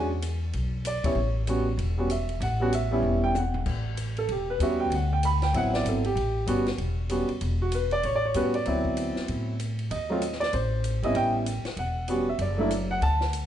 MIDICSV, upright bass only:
0, 0, Header, 1, 3, 480
1, 0, Start_track
1, 0, Tempo, 312012
1, 1791, Time_signature, 4, 2, 24, 8
1, 20708, End_track
2, 0, Start_track
2, 0, Title_t, "Upright bass"
2, 0, Program_c, 0, 32
2, 0, Note_on_c, 0, 40, 79
2, 781, Note_off_c, 0, 40, 0
2, 827, Note_on_c, 0, 35, 76
2, 1549, Note_off_c, 0, 35, 0
2, 1768, Note_on_c, 0, 33, 90
2, 2692, Note_off_c, 0, 33, 0
2, 2729, Note_on_c, 0, 28, 80
2, 3653, Note_off_c, 0, 28, 0
2, 3697, Note_on_c, 0, 33, 89
2, 4617, Note_off_c, 0, 33, 0
2, 4652, Note_on_c, 0, 28, 83
2, 5575, Note_off_c, 0, 28, 0
2, 5628, Note_on_c, 0, 33, 86
2, 6543, Note_off_c, 0, 33, 0
2, 6592, Note_on_c, 0, 28, 77
2, 7040, Note_off_c, 0, 28, 0
2, 7059, Note_on_c, 0, 39, 76
2, 7513, Note_off_c, 0, 39, 0
2, 7541, Note_on_c, 0, 38, 88
2, 8460, Note_off_c, 0, 38, 0
2, 8506, Note_on_c, 0, 33, 77
2, 8956, Note_off_c, 0, 33, 0
2, 8993, Note_on_c, 0, 32, 73
2, 9440, Note_off_c, 0, 32, 0
2, 9467, Note_on_c, 0, 33, 85
2, 9917, Note_off_c, 0, 33, 0
2, 9947, Note_on_c, 0, 31, 68
2, 10397, Note_off_c, 0, 31, 0
2, 10431, Note_on_c, 0, 28, 74
2, 11152, Note_off_c, 0, 28, 0
2, 11403, Note_on_c, 0, 28, 90
2, 12310, Note_off_c, 0, 28, 0
2, 12365, Note_on_c, 0, 33, 75
2, 12806, Note_off_c, 0, 33, 0
2, 12841, Note_on_c, 0, 45, 62
2, 13284, Note_off_c, 0, 45, 0
2, 13332, Note_on_c, 0, 38, 84
2, 14043, Note_off_c, 0, 38, 0
2, 14286, Note_on_c, 0, 45, 80
2, 15190, Note_off_c, 0, 45, 0
2, 15241, Note_on_c, 0, 39, 83
2, 16147, Note_off_c, 0, 39, 0
2, 16200, Note_on_c, 0, 33, 87
2, 16915, Note_off_c, 0, 33, 0
2, 16958, Note_on_c, 0, 32, 66
2, 17133, Note_off_c, 0, 32, 0
2, 17146, Note_on_c, 0, 33, 85
2, 17866, Note_off_c, 0, 33, 0
2, 18101, Note_on_c, 0, 28, 77
2, 19015, Note_off_c, 0, 28, 0
2, 19055, Note_on_c, 0, 30, 85
2, 19971, Note_off_c, 0, 30, 0
2, 20016, Note_on_c, 0, 38, 88
2, 20708, Note_off_c, 0, 38, 0
2, 20708, End_track
3, 0, Start_track
3, 0, Title_t, "Muted upright bass strokes"
3, 1605, Note_on_c, 9, 29, 41
3, 1759, Note_off_c, 9, 29, 0
3, 14105, Note_on_c, 9, 29, 36
3, 14259, Note_off_c, 9, 29, 0
3, 17917, Note_on_c, 9, 29, 36
3, 18071, Note_off_c, 9, 29, 0
3, 20708, End_track
0, 0, End_of_file